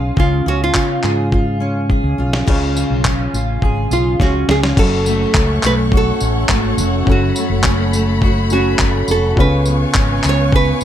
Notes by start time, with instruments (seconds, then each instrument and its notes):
Already playing: fretless electric bass B1, steel-string acoustic guitar C#3 C#4 F4 G#4
0.16 fretless electric bass C#2, steel-string acoustic guitar C#3, nylon-string guitar F4, kick
0.46 fretless electric bass C#2, steel-string acoustic guitar C#4, nylon-string guitar F#4
0.64 nylon-string guitar F4
0.73 fretless electric bass C#3, steel-string acoustic guitar F4, kick, clap
1.03 fretless electric bass G#2, steel-string acoustic guitar G#4, clap
1.32 steel-string acoustic guitar F4, kick
1.60 steel-string acoustic guitar C#4
1.90 steel-string acoustic guitar G#4, kick
2.04 fretless electric bass C#2
2.18 fretless electric bass B1, steel-string acoustic guitar F4
2.33 snare
2.45 fretless electric bass C#2, steel-string acoustic guitar C#3, upright piano G#3 C#4 F4, kick, crash
2.49 upright piano C#5
2.77 steel-string acoustic guitar F4, tambourine
2.90 fretless electric bass B1
3.05 steel-string acoustic guitar C#4, kick, clap
3.34 fretless electric bass A1, steel-string acoustic guitar F4, tambourine
3.62 fretless electric bass G#1, steel-string acoustic guitar G#4, kick
3.91 fretless electric bass B1, steel-string acoustic guitar F4, nylon-string guitar F4, tambourine
4.20 fretless electric bass C#2, steel-string acoustic guitar C#4, nylon-string guitar F#4, kick, snare
4.48 fretless electric bass C#2, steel-string acoustic guitar F4, nylon-string guitar G#4, snare
4.63 snare
4.76 fretless electric bass F#1, steel-string acoustic guitar F#2, upright piano C#4 F#4 A4, string section A4 C#5 F#5 C#6, nylon-string guitar A4, kick, crash
5.06 steel-string acoustic guitar A3, tambourine
5.34 fretless electric bass C#2, steel-string acoustic guitar C#4, kick, clap
5.63 fretless electric bass B1, steel-string acoustic guitar A3, nylon-string guitar B4, clap, tambourine
5.92 steel-string acoustic guitar F#4, kick
5.97 nylon-string guitar A4
6.20 fretless electric bass A1, steel-string acoustic guitar C#4, tambourine
6.49 fretless electric bass G#1, steel-string acoustic guitar A3, kick, clap
6.77 fretless electric bass F1, steel-string acoustic guitar F#4, tambourine
7.05 fretless electric bass F#1, steel-string acoustic guitar F#2, upright piano C#4 F#4, string section B5, kick
7.09 nylon-string guitar F#4, upright piano A4
7.36 steel-string acoustic guitar A3, tambourine
7.50 fretless electric bass F#1
7.63 steel-string acoustic guitar C#4, kick, clap
7.93 steel-string acoustic guitar A3, tambourine
8.22 steel-string acoustic guitar F#4, kick
8.50 upright piano C#4 F#4 A4, steel-string acoustic guitar C#4, nylon-string guitar F#4, tambourine
8.79 fretless electric bass F#1, steel-string acoustic guitar A3, kick, clap
9.08 fretless electric bass F1, steel-string acoustic guitar F#4, nylon-string guitar A4, tambourine
9.35 fretless electric bass C#2, steel-string acoustic guitar C#3, upright piano B3 C#4 F4 G#4 C#5, string section F5 G#5 C#6, kick
9.39 string section B4, nylon-string guitar B4
9.65 steel-string acoustic guitar B3, tambourine
9.94 fretless electric bass G#1, steel-string acoustic guitar C#4, kick, clap
10.23 fretless electric bass C#2, steel-string acoustic guitar B3, clap, tambourine
10.29 nylon-string guitar C#5
10.52 steel-string acoustic guitar G#4, nylon-string guitar B4, kick
10.81 tambourine